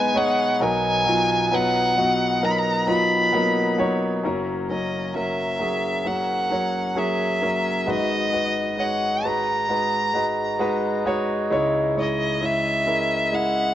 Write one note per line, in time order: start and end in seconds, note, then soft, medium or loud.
0.00 0.56 B1 medium
0.00 0.57 B2 medium
0.00 0.14 G#3 medium
0.00 0.15 B3 medium
0.00 0.15 D#4 medium
0.00 0.62 B4 loud
0.00 0.19 G#5 loud
0.14 0.58 G#3 medium
0.14 0.58 B3 medium
0.14 0.58 D#4 medium
0.14 0.59 C#5 medium
0.14 0.62 F#5 medium
0.60 4.20 B1 medium
0.60 4.21 B2 medium
0.60 1.04 F#3 medium
0.60 1.04 B3 medium
0.60 1.04 D#4 medium
0.60 1.04 A#4 medium
0.60 1.56 G#5 loud
1.05 1.49 F#3 medium
1.05 1.49 B3 medium
1.05 1.50 D#4 medium
1.05 1.50 F4 medium
1.51 1.94 F#3 medium
1.51 1.95 B3 medium
1.51 1.95 D#4 medium
1.51 1.95 B4 medium
1.51 2.46 F#5 loud
1.96 2.40 F#3 medium
1.96 2.40 B3 medium
1.96 2.40 D#4 medium
1.96 2.40 F#4 medium
2.41 2.85 F#3 medium
2.41 2.85 B3 medium
2.41 2.86 D#4 medium
2.41 2.86 A#4 medium
2.41 2.53 A#5 medium
2.51 2.60 B5 medium
2.58 2.89 A#5 medium
2.87 3.30 F#3 medium
2.87 3.31 B3 medium
2.87 3.31 D#4 medium
2.87 3.31 F4 medium
2.87 3.76 B5 loud
3.33 3.76 F#3 medium
3.33 3.77 A#3 loud
3.33 3.76 B3 medium
3.33 3.77 D#4 medium
3.78 4.21 F#3 medium
3.78 4.22 B3 medium
3.78 4.22 D#4 medium
3.78 4.22 C#5 medium
4.23 7.84 F#1 medium
4.23 7.84 F#2 medium
4.23 4.67 F#3 medium
4.23 4.67 A#3 medium
4.23 4.68 C#4 medium
4.23 4.68 A#4 medium
4.69 5.12 F#3 medium
4.69 5.13 A#3 soft
4.69 5.13 C#4 medium
4.69 5.14 A#4 medium
4.69 5.13 D#5 medium
5.14 5.58 F#3 medium
5.14 5.58 A#3 medium
5.14 5.58 C#4 medium
5.14 5.59 A#4 medium
5.14 6.08 E5 medium
5.59 6.03 F#3 medium
5.59 6.03 A#3 soft
5.59 6.04 C#4 medium
5.59 6.04 G#4 medium
6.05 6.48 F#3 medium
6.05 6.49 A#3 medium
6.05 6.49 C#4 medium
6.05 6.50 A#4 medium
6.05 7.00 F#5 medium
6.50 6.94 F#3 medium
6.50 6.94 A#3 medium
6.50 6.95 C#4 medium
6.50 6.95 C#5 medium
6.95 7.39 F#3 medium
6.95 7.40 A#3 medium
6.95 7.40 C#4 medium
6.95 7.40 G#4 medium
6.95 7.90 E5 medium
7.41 7.85 F#3 medium
7.41 7.85 A#3 medium
7.41 7.85 C#4 medium
7.41 7.86 A#4 medium
7.86 11.47 G#1 soft
7.86 11.47 G#2 medium
7.86 8.30 G#3 medium
7.86 8.30 D#4 medium
7.86 8.31 F#4 medium
7.86 8.31 B4 medium
7.86 8.81 D#5 medium
8.32 8.76 G#3 medium
8.32 8.76 D#4 medium
8.32 8.76 F#4 medium
8.32 8.77 B4 medium
8.77 9.21 G#3 medium
8.77 9.21 D#4 medium
8.77 9.22 F#4 medium
8.77 9.22 C#5 medium
8.77 9.27 F#5 medium
9.23 9.67 G#3 medium
9.23 9.67 D#4 medium
9.23 9.68 F#4 medium
9.23 9.68 B4 medium
9.23 11.07 A#5 medium
9.69 10.12 G#3 medium
9.69 10.13 D#4 medium
9.69 10.13 F#4 medium
9.69 10.13 B4 medium
10.14 10.57 G#3 medium
10.14 10.58 D#4 medium
10.14 10.58 F#4 medium
10.14 10.58 B4 medium
10.59 11.03 G#3 medium
10.59 11.03 D#4 medium
10.59 11.04 F#4 medium
10.59 11.04 B4 loud
11.05 11.49 G#3 medium
11.05 11.49 D#4 medium
11.05 11.49 F#4 medium
11.05 11.50 C#5 loud
11.50 13.74 C#2 medium
11.50 13.74 C#3 medium
11.50 11.94 G#3 medium
11.50 11.94 D#4 medium
11.50 11.95 E4 medium
11.50 11.95 C#5 loud
11.95 12.39 G#3 medium
11.95 12.39 D#4 medium
11.95 12.40 E4 medium
11.95 12.40 C#5 medium
12.00 12.47 D#5 medium
12.41 12.84 G#3 medium
12.41 12.85 C#4 medium
12.41 12.85 E4 medium
12.41 12.86 E5 medium
12.45 13.37 E5 medium
12.86 13.30 G#3 medium
12.86 13.30 C#4 medium
12.86 13.31 E4 medium
12.86 13.31 A#4 medium
13.32 13.74 G#3 medium
13.32 13.74 E4 medium
13.32 13.74 D#5 medium
13.32 13.74 E5 medium
13.32 13.74 F#5 loud